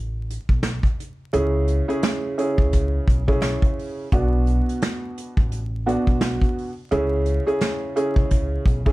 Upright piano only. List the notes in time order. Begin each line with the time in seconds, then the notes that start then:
1.33 C#3 C#4 E4 G#4
1.88 C#3 C#4 E4 G#4
2.38 C#3 C#4 E4 G#4
3.28 C#3 C#4 E4 G#4
4.13 B2 B3 D4 F#4
5.86 B2 B3 D4 F#4
6.91 C#3 C#4 E4 G#4
7.46 C#3 C#4 E4 G#4
7.96 C#3 C#4 E4 G#4
8.86 C#3 C#4 E4 G#4